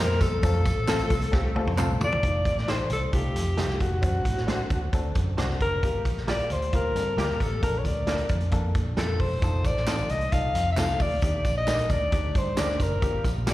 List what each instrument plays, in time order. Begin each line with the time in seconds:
Already playing: fingered electric bass F2, clean electric guitar G3 D#4, upright piano A#3
0.00 upright piano D#4 G4 A#4, alto saxophone A#4
0.10 snare
0.21 fingered electric bass E2, alto saxophone A4, kick, closed hi-hat, tambourine
0.43 fingered electric bass F2, upright piano A3 C4 F4 A4, kick, closed hi-hat, tambourine
0.65 fingered electric bass A1, kick, closed hi-hat, tambourine
0.87 upright piano A3 C4 F4 A4, clean electric guitar C4 F4 A4 C5, snare, clap, closed hi-hat, tambourine
0.99 closed hi-hat
1.10 fingered electric bass C2, kick, closed hi-hat, tambourine
1.22 closed hi-hat
1.32 fingered electric bass C2, upright piano A3 C4 F4 G4, kick, snare, tambourine
1.55 upright piano A3 C4 F4 A4, muted fingered electric bass stroke, high tom
1.67 fingered electric bass F2, high tom
1.77 fingered electric bass C2, upright piano A3 C4 F4 A4, clean electric guitar C4 F4 A4 C5, clap, mid tom, tambourine
2.00 fingered electric bass E2, alto saxophone D5, floor tom, tambourine
2.12 floor tom
2.22 fingered electric bass F1, upright piano A3 D#4 F4, kick, closed hi-hat
2.45 fingered electric bass A1, kick, closed hi-hat
2.58 snare
2.67 upright piano A3 D#4 G4, clean electric guitar A3 D#4 F4 C5, alto saxophone C5, snare, closed hi-hat
2.90 fingered electric bass C2, alto saxophone A4, closed hi-hat
3.12 fingered electric bass C2, upright piano A3 D#4 F4, alto saxophone G4, kick, closed hi-hat
3.36 fingered electric bass F2, closed hi-hat
3.57 fingered electric bass C2, upright piano A3 D#4 F4, clean electric guitar A3 D#4 F4 C5, snare, closed hi-hat
3.70 snare
3.80 fingered electric bass F1, alto saxophone F#4, kick, closed hi-hat
4.01 fingered electric bass F#2, upright piano C4 D4 F#4, kick, closed hi-hat
4.25 fingered electric bass A2, kick, closed hi-hat
4.37 snare
4.47 clean electric guitar A3 D4 F#4 C5, upright piano C4 D4 F#4, snare, closed hi-hat
4.70 fingered electric bass D2, kick, closed hi-hat
4.93 fingered electric bass D2, upright piano C4 D4 A4, kick, closed hi-hat
5.15 fingered electric bass F#2, kick, closed hi-hat
5.37 fingered electric bass C2, clean electric guitar A3 D4 F#4 C5, upright piano C4 D4 F#4, snare, closed hi-hat
5.50 snare
5.61 fingered electric bass F#1, alto saxophone A#4, kick, closed hi-hat
5.83 fingered electric bass G1, upright piano A#3 F4 G4, kick, closed hi-hat
6.05 fingered electric bass A#1, kick, closed hi-hat
6.17 snare
6.27 clean electric guitar A#3 F4 G4 D5, upright piano A#3 F4 G4, alto saxophone D5, snare, closed hi-hat
6.39 muted fingered electric bass stroke, closed hi-hat
6.50 fingered electric bass D2, alto saxophone C5, closed hi-hat
6.62 closed hi-hat
6.73 fingered electric bass D2, clean electric guitar A3 F4, upright piano A#3 F4 G4, alto saxophone A#4, kick, closed hi-hat
6.95 fingered electric bass G2, clean electric guitar C4 A4, closed hi-hat
7.17 fingered electric bass D2, upright piano A#3 F4 G4, clean electric guitar A#3 F4 G4 D5, snare, closed hi-hat
7.30 snare
7.40 fingered electric bass A1, alto saxophone A4, kick, closed hi-hat
7.62 fingered electric bass A#1, upright piano A#3 D4 A4, alto saxophone A#4, kick, closed hi-hat
7.78 alto saxophone C#5
7.85 fingered electric bass D2, alto saxophone D5, kick, closed hi-hat
8.07 upright piano A#3 D4 A#4, clean electric guitar D4 F4 A4 D5, snare, closed hi-hat
8.18 closed hi-hat
8.29 fingered electric bass F2, kick, closed hi-hat
8.40 closed hi-hat
8.51 fingered electric bass F2, upright piano A#3 D4 A4, kick, closed hi-hat
8.75 fingered electric bass A#2, kick, closed hi-hat
8.96 fingered electric bass F2, upright piano A#3 D4 A4, clean electric guitar D4 F4 A4 D5, alto saxophone A4, snare, closed hi-hat
9.20 fingered electric bass E1, alto saxophone C5, kick, open hi-hat
9.41 fingered electric bass F1, upright piano D#4 F4 A4, kick, closed hi-hat, tambourine
9.64 fingered electric bass A1, alto saxophone D5, kick, closed hi-hat, tambourine
9.76 snare
9.87 clean electric guitar C4 F4 A4 D#5, upright piano D#4 F4 A4, snare, clap, closed hi-hat, tambourine
9.98 closed hi-hat
10.09 fingered electric bass C2, alto saxophone D#5, closed hi-hat, tambourine
10.21 closed hi-hat
10.32 fingered electric bass C2, upright piano D#4 F4 A4, alto saxophone F5, kick, closed hi-hat, tambourine
10.55 fingered electric bass F2, closed hi-hat
10.72 alto saxophone E5
10.76 fingered electric bass C2, clean electric guitar C4 F4 A4 D#5, upright piano D#4 F4 A4, alto saxophone F5, snare, clap, closed hi-hat, tambourine
10.89 snare
11.00 fingered electric bass D2, alto saxophone D5, kick, open hi-hat, tambourine
11.22 fingered electric bass D#2, upright piano D4 D#4 G4, kick, closed hi-hat, tambourine
11.45 fingered electric bass A#1, kick, closed hi-hat, tambourine
11.57 alto saxophone D#5
11.67 clean electric guitar D4 G4 A#4 D5, upright piano D4 D#4 A#4, snare, clap, closed hi-hat, tambourine
11.79 closed hi-hat
11.89 fingered electric bass D2, alto saxophone D5, kick, closed hi-hat, tambourine
12.11 fingered electric bass D2, upright piano D4 D#4 G4, kick, closed hi-hat, tambourine
12.35 fingered electric bass G2, alto saxophone C5, kick, closed hi-hat
12.56 fingered electric bass D2, upright piano D4 D#4 G4, clean electric guitar D4 G4 A#4 D5, alto saxophone D5, snare, clap, closed hi-hat, tambourine
12.69 snare
12.80 fingered electric bass F#1, alto saxophone A#4, kick, closed hi-hat, tambourine
13.02 fingered electric bass G1, upright piano A#3 F4 G4, kick, closed hi-hat, tambourine
13.24 fingered electric bass A#1, kick, closed hi-hat, tambourine
13.47 upright piano A#3 F4 G4, clean electric guitar D4 F4 A#4 D5, alto saxophone D5, snare, clap, closed hi-hat, tambourine